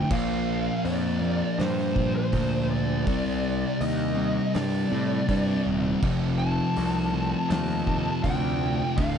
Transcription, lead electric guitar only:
0.00 0.11 G5 loud
0.12 0.81 F5 loud
0.85 1.59 D5 loud
1.59 2.14 C5 medium
2.15 2.66 C5 medium
2.71 3.81 D5 loud
3.82 4.55 D#5 loud
4.55 5.62 D5 medium
6.38 7.48 A5 medium
7.49 8.23 A5 loud
8.23 9.00 G5 loud
8.97 9.18 F5 loud

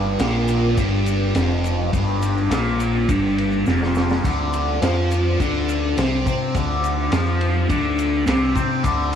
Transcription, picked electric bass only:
0.00 0.16 G1 loud
0.19 0.73 A#1 loud
0.77 1.31 G1 medium
1.35 1.89 F1 medium
1.93 2.47 G1 medium
2.50 3.04 A#1 loud
3.09 3.63 G1 loud
3.66 4.20 F1 medium
4.24 4.78 D2 loud
4.82 5.36 F2 loud
5.40 5.93 D2 loud
5.97 6.24 C2 medium
6.26 6.53 C3 medium
6.55 7.08 D2 medium
7.12 7.65 F2 loud
7.70 8.23 D2 medium
8.27 8.54 C2 medium
8.56 8.82 C3 loud
8.84 9.15 D2 loud

